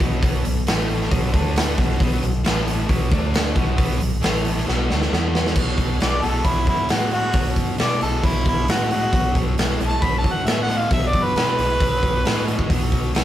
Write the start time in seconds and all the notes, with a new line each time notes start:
0.00 B1 B2 F#3 B3, kick, open hi-hat
0.23 B1 B2 F#3 B3, kick, open hi-hat
0.45 B1 B2 F#3, open hi-hat
0.67 A1 A2 E3 A3, snare, open hi-hat
0.90 open hi-hat
1.02 snare
1.11 B1 B2 F#3 B3, kick, open hi-hat
1.34 D2 D3 A3 D4, kick, open hi-hat
1.56 snare, open hi-hat
1.78 B1 B2 F#3 B3, kick, open hi-hat
2.00 B1 B2 F#3 B3, kick, open hi-hat
2.23 B1 B2 F#3, open hi-hat
2.44 A1 A2 E3 A3, snare, open hi-hat
2.67 open hi-hat
2.88 B1 B2 F#3 B3, kick, open hi-hat
3.11 D2 D3 A3 D4, kick, open hi-hat
3.34 snare, open hi-hat
3.55 B1 B2 F#3 B3, kick, open hi-hat
3.77 B1 B2 F#3 B3, kick, open hi-hat
4.00 B1 B2 F#3, open hi-hat
4.21 A1 A2 E3 A3, snare, open hi-hat
4.45 open hi-hat
4.57 snare
4.66 B1 B2 F#3 B3, snare
4.88 D2 D3 A3 D4, snare
5.01 snare
5.11 E2 E3 B3 E4, snare
5.35 snare
5.46 snare
5.56 B1 B2 F#3, kick, crash
5.78 B1, kick, open hi-hat
6.00 B1 B2 G#3 D5, snare, open hi-hat
6.22 B1 B2 G#3 A4, open hi-hat
6.44 B1 B2 F#3 E4, kick, open hi-hat
6.67 F#2 E4, kick, open hi-hat
6.89 A2 B2 G#3 F#4, snare, open hi-hat
7.11 B2 G#3 F#4, open hi-hat
7.33 B1 B2 F#3, kick, open hi-hat
7.56 F#2, kick, open hi-hat
7.78 B2 G#3 D5, snare, open hi-hat
8.01 B1 B2 G#3 A4, open hi-hat
8.24 B1 B2 F#3 E4, kick, open hi-hat
8.46 B1 E4, kick, open hi-hat
8.67 A2 B2 G#3 F#4, snare, open hi-hat
8.91 B2 G#3 F#4, open hi-hat
9.13 B1 B2 F#3, kick, open hi-hat
9.35 B1, kick, open hi-hat
9.58 B1 B2 G#3, snare, open hi-hat
9.80 B1 B2 G#3, open hi-hat
9.88 A5
10.02 B1 B2 F#3 B5, kick, open hi-hat
10.18 A5
10.24 F#2, kick, open hi-hat
10.33 F#5
10.46 A2 B2 G#3 E5, snare, open hi-hat
10.63 F#5
10.69 B2 G#3, open hi-hat
10.77 F5
10.91 B1 B2 F#3 E5, kick, open hi-hat
11.08 D5
11.13 F#2, kick, open hi-hat
11.23 B4
11.35 B2 G#3 B4, snare, open hi-hat
11.57 B1 B2 G#3, open hi-hat
11.80 B1 B2 F#3, kick, open hi-hat
12.03 B1, kick, open hi-hat
12.25 A2 B2 G#3, snare, open hi-hat
12.47 B2 G#3, open hi-hat
12.59 kick
12.70 B1 B2 F#3, kick, open hi-hat
12.92 B1, kick, open hi-hat
13.14 B1 B2 G#3, snare, open hi-hat